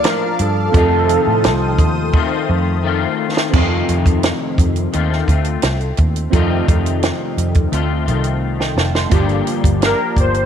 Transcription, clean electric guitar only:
0.00 0.74 F3 medium
0.00 0.78 A4 medium
0.06 0.75 D4 medium
0.72 2.13 F2 medium
0.72 2.14 C3 medium
0.72 2.13 D#3 medium
0.72 2.14 A3 medium
0.77 2.15 C4 medium
0.77 2.16 F4 medium
2.13 2.83 D#3 medium
2.13 2.84 A3 medium
2.13 2.85 C4 medium
2.13 2.86 F4 medium
2.83 3.55 D#3 medium
2.83 3.55 A3 medium
2.83 3.56 C4 medium
2.83 3.57 F4 medium
3.52 4.93 F2 medium
3.52 4.93 C3 medium
3.52 4.91 D#3 medium
3.52 4.92 A3 medium
3.57 4.93 C4 medium
3.57 4.95 F4 medium
4.92 5.28 D#3 medium
4.92 5.28 A3 medium
4.92 5.28 C4 medium
4.92 5.26 F4 medium
5.27 6.33 A3 medium
5.27 6.33 C4 medium
5.27 6.36 F4 medium
6.31 7.72 F2 medium
6.31 7.72 C3 medium
6.31 7.73 D#3 medium
6.31 7.71 A3 medium
6.35 7.72 C4 medium
6.35 7.74 F4 medium
7.72 8.07 A3 medium
7.72 8.06 C4 medium
7.72 8.05 F4 medium
8.06 9.12 D#3 medium
8.06 9.12 A3 soft
8.06 9.12 C4 medium
8.06 9.13 F4 medium
9.11 9.81 G2 medium
9.11 9.82 D3 medium
9.11 9.81 F3 medium
9.11 9.82 A#3 medium
9.11 9.82 D4 medium
9.11 9.84 G4 medium
9.81 10.46 F3 medium
9.81 10.46 A#3 medium
9.81 10.46 D4 medium
9.81 10.46 G4 medium

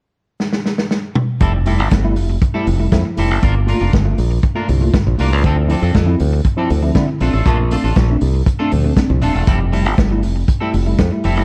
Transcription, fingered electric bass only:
1.41 1.80 F1 medium
1.80 1.89 G1 medium
1.92 2.18 G1 medium
2.18 2.37 F1 medium
2.67 2.87 F1 medium
2.92 3.02 F2 medium
3.18 3.31 F1 medium
3.31 3.40 F#1 medium
3.43 3.72 G1 medium
3.81 3.91 F1 medium
3.94 4.13 G1 medium
4.18 4.38 A#1 medium
4.69 4.89 C2 medium
5.07 5.16 A#1 medium
5.20 5.33 C2 medium
5.33 5.42 C#2 medium
5.44 5.74 D2 medium
5.82 5.92 F2 medium
5.95 6.14 F2 medium
6.20 6.40 D2 medium
6.70 6.90 D2 loud
6.95 7.05 D3 loud
7.21 7.31 A#1 medium
7.34 7.43 A1 medium
7.46 7.75 A#1 medium
7.84 7.94 A1 medium
7.97 8.16 A#1 loud
8.22 8.41 C2 medium
8.72 8.92 D2 medium
9.10 9.20 C2 medium
9.23 9.33 D#1 medium
9.35 9.45 E1 medium
9.48 9.86 F1 medium
9.86 9.96 G1 medium
9.98 10.24 G1 medium
10.24 10.43 F1 medium
10.74 10.94 F1 medium
10.99 11.09 F2 medium
11.25 11.37 F1 medium
11.37 11.44 F#1 medium

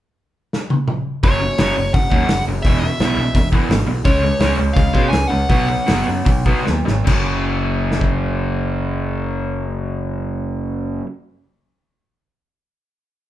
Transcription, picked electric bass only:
1.24 1.47 F#1 medium
1.59 1.70 F#1 medium
1.78 1.89 F#1 medium
1.94 2.05 F#1 medium
2.12 2.23 D#2 medium
2.29 2.40 F#1 medium
2.47 2.59 F#1 medium
2.65 2.88 E1 medium
3.00 3.11 B1 medium
3.17 3.29 B1 medium
3.35 3.58 E1 loud
3.69 3.81 G#1 medium
3.87 3.98 B1 medium
4.06 4.29 C#2 medium
4.40 4.52 C#2 medium
4.58 4.70 C#2 medium
4.76 4.88 C#2 medium
4.95 5.07 B2 medium
5.12 5.24 C#2 medium
5.32 5.44 C#2 medium
5.50 5.75 B1 loud
5.89 6.01 F#1 medium
6.08 6.21 F#2 medium
6.26 6.52 B1 medium
6.69 6.81 D#2 medium
6.88 7.01 G#1 medium
7.07 11.00 F#1 medium

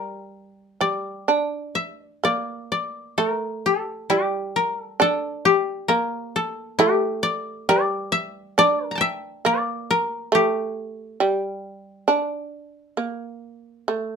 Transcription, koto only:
0.00 1.65 A#4 medium
0.00 0.29 G5 medium
0.81 2.04 D5 medium
1.75 2.04 E5 medium
2.04 2.25 D5 medium
2.25 2.71 D5 medium
2.72 4.32 D5 medium
3.18 3.29 A4 medium
3.29 3.72 A#4 medium
3.66 4.62 A4 medium
4.10 5.45 G4 medium
4.56 4.80 A#4 medium
4.80 5.02 A4 medium
5.02 5.94 A4 medium
5.45 6.78 G4 medium
5.88 6.42 A#4 medium
6.36 8.26 A4 medium
6.79 8.83 G4 medium
7.23 7.68 D5 medium
7.69 8.58 D5 medium
8.12 9.00 E5 loud
8.59 8.86 D5 loud
8.86 9.46 A#4 loud
8.91 10.12 A#5 soft
8.95 10.32 G5 medium
8.95 9.97 A5 soft
9.01 10.50 E5 loud
9.46 11.06 D5 medium
9.91 11.74 A#4 medium
10.35 14.16 G4 medium

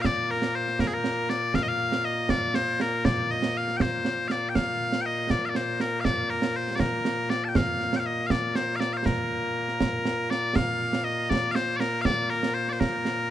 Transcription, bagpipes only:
0.00 13.30 A#2 medium
0.00 13.30 A#3 medium
0.00 0.06 F5 loud
0.06 0.31 D5 loud
0.31 0.55 A#4 medium
0.55 0.80 C5 medium
0.80 0.87 A#4 medium
0.87 0.94 G#4 medium
0.94 1.30 A#4 medium
1.30 1.55 D5 loud
1.55 1.63 F5 loud
1.63 1.68 D#5 loud
1.68 2.05 F5 loud
2.05 2.30 D#5 medium
2.30 2.55 D5 loud
2.55 2.81 C5 medium
2.81 3.05 A#4 medium
3.05 3.31 D5 loud
3.31 3.57 D#5 medium
3.57 3.77 F5 loud
3.77 3.81 G5 medium
3.81 4.28 C5 medium
4.28 4.49 D5 medium
4.28 4.31 F5 medium
4.49 4.55 G5 medium
4.55 5.01 F5 loud
5.01 5.06 G5 medium
5.06 5.31 D#5 medium
5.31 5.45 D5 medium
5.45 5.56 D5 medium
5.45 5.49 F5 medium
5.56 5.81 C5 medium
5.81 6.00 A#4 medium
6.00 6.05 F5 loud
6.05 6.30 D5 loud
6.30 6.56 A#4 medium
6.56 6.76 C5 medium
6.76 6.80 D5 medium
6.80 7.30 A#4 medium
7.30 7.44 D5 medium
7.44 7.56 G5 medium
7.44 7.48 A5 medium
7.56 7.96 F5 loud
7.96 8.06 F5 medium
7.96 7.99 G5 medium
8.06 8.26 D#5 medium
8.26 8.31 F5 medium
8.31 8.56 D5 medium
8.56 8.76 C5 medium
8.76 8.80 F5 medium
8.80 8.93 D5 medium
8.93 9.06 C5 medium
8.93 8.97 F5 medium
9.06 10.30 A#4 medium
10.30 10.56 D5 loud
10.56 11.04 F5 loud
11.04 11.30 D#5 medium
11.30 11.51 D5 loud
11.51 11.77 C5 medium
11.51 11.55 F5 medium
11.77 12.01 A#4 loud
11.77 11.80 D5 loud
12.01 12.30 D5 loud
12.01 12.05 F5 loud
12.30 12.54 A#4 medium
12.54 12.69 C5 medium
12.69 12.80 C5 medium
12.69 12.73 D5 medium
12.80 13.30 A#4 medium

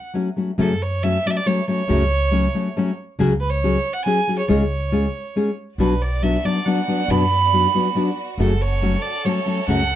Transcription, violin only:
0.00 0.11 F#5 medium
0.61 0.84 A4 medium
0.82 1.04 C#5 medium
1.03 1.28 E5 loud
1.27 1.32 D5 medium
1.27 1.38 E5 medium
1.37 1.48 D5 loud
1.47 1.68 C#5 medium
1.69 2.94 C#5 loud
3.40 3.52 B4 medium
3.50 3.95 C#5 medium
3.93 4.04 F#5 loud
4.04 4.35 G#5 medium
4.39 4.48 C#5 medium
4.50 5.54 C#5 medium
5.80 6.03 B4 medium
6.02 6.25 D5 medium
6.23 6.47 E5 medium
6.45 6.67 D5 medium
6.66 7.13 F#5 medium
7.11 8.18 B5 loud
8.41 8.63 A4 medium
8.62 9.04 C#5 medium
9.02 9.27 D5 medium
9.25 9.68 C#5 medium
9.68 9.95 F#5 medium

